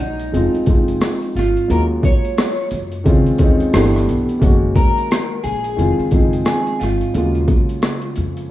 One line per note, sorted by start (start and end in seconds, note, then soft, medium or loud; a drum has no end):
0.00 0.30 A#1 medium
0.00 0.17 F#3 medium
0.00 0.17 G#3 medium
0.00 0.18 A#3 medium
0.00 0.18 C#4 medium
0.00 0.19 D#4 medium
0.00 1.36 D#4 medium
0.20 closed hi-hat soft
0.32 0.52 F1 medium
0.32 0.63 F3 medium
0.32 0.63 G#3 medium
0.32 0.64 C4 medium
0.32 0.64 D#4 medium
0.32 closed hi-hat medium
0.37 0.65 F4 medium
0.54 muted upright bass stroke soft
0.54 closed hi-hat soft
0.66 0.98 F#1 medium
0.66 1.57 F3 medium
0.66 1.58 G#3 medium
0.66 1.59 C4 medium
0.66 1.59 D#4 medium
0.66 kick medium
0.66 closed hi-hat medium
0.70 1.60 F4 medium
0.88 closed hi-hat soft
1.01 cross-stick medium
1.01 closed hi-hat medium
1.22 closed hi-hat soft
1.35 1.54 G#1 medium
1.35 1.71 F4 medium
1.35 cross-stick soft
1.35 closed hi-hat medium
1.57 closed hi-hat soft
1.68 2.01 D#2 loud
1.68 2.90 F#3 medium
1.68 2.90 G#3 medium
1.68 2.91 A#3 medium
1.68 2.91 C#4 medium
1.68 1.80 A#4 medium
1.68 closed hi-hat medium
1.73 2.92 F4 medium
2.03 2.68 C#5 medium
2.03 kick medium
2.03 closed hi-hat medium
2.25 closed hi-hat soft
2.38 cross-stick loud
2.38 closed hi-hat medium
2.71 3.03 F#2 medium
2.71 closed hi-hat medium
2.92 closed hi-hat soft
3.04 3.24 C#2 medium
3.04 3.35 D#3 medium
3.04 3.36 G#3 medium
3.04 3.36 C4 medium
3.04 3.37 C#4 medium
3.04 kick medium
3.04 closed hi-hat medium
3.09 3.37 F4 medium
3.26 muted upright bass stroke soft
3.26 closed hi-hat soft
3.38 3.71 D#2 medium
3.38 3.73 D#3 medium
3.38 3.74 G#3 medium
3.38 3.74 C4 medium
3.38 3.75 C#4 medium
3.38 kick medium
3.38 closed hi-hat medium
3.43 3.75 D#4 medium
3.60 closed hi-hat soft
3.72 4.05 G1 medium
3.72 4.34 E3 medium
3.72 4.34 A3 medium
3.72 4.35 B3 medium
3.72 4.35 D4 medium
3.72 cross-stick medium
3.72 closed hi-hat medium
3.77 4.36 G4 medium
3.95 cross-stick soft
3.95 closed hi-hat soft
4.08 4.27 B1 medium
4.08 closed hi-hat medium
4.29 closed hi-hat soft
4.40 4.73 F#1 medium
4.40 5.62 D#3 medium
4.40 5.62 G#3 medium
4.40 5.63 A#3 medium
4.40 5.63 C#4 medium
4.40 kick loud
4.40 closed hi-hat medium
4.44 5.64 F#4 medium
4.76 5.43 A#4 loud
4.76 kick medium
4.76 closed hi-hat medium
4.98 closed hi-hat soft
5.11 cross-stick loud
5.11 closed hi-hat medium
5.44 5.75 A#1 medium
5.44 6.45 G#4 loud
5.44 closed hi-hat medium
5.64 closed hi-hat soft
5.76 5.97 F1 medium
5.76 6.08 D#3 medium
5.76 6.08 F3 medium
5.76 6.09 G#3 medium
5.76 6.09 C4 medium
5.76 closed hi-hat medium
5.81 6.10 F4 medium
5.99 muted upright bass stroke soft
5.99 closed hi-hat soft
6.11 6.43 F#1 medium
6.11 7.03 D#3 medium
6.11 7.03 F3 medium
6.11 7.04 G#3 medium
6.11 7.04 C4 medium
6.11 kick medium
6.11 closed hi-hat medium
6.16 7.05 D#4 medium
6.33 closed hi-hat soft
6.45 6.81 G#4 medium
6.45 cross-stick medium
6.45 closed hi-hat medium
6.67 closed hi-hat soft
6.80 7.00 G#1 medium
6.80 8.51 F4 medium
6.80 cross-stick soft
6.80 closed hi-hat medium
7.01 closed hi-hat soft
7.14 7.46 D#2 loud
7.14 8.35 C#3 medium
7.14 8.35 F#3 medium
7.14 8.36 G#3 medium
7.14 8.37 A#3 medium
7.14 closed hi-hat medium
7.18 8.37 F4 medium
7.35 closed hi-hat soft
7.48 kick medium
7.48 closed hi-hat medium
7.69 closed hi-hat soft
7.82 cross-stick loud
7.82 closed hi-hat medium
8.02 closed hi-hat soft
8.16 8.48 F2 medium
8.16 closed hi-hat medium
8.37 closed hi-hat medium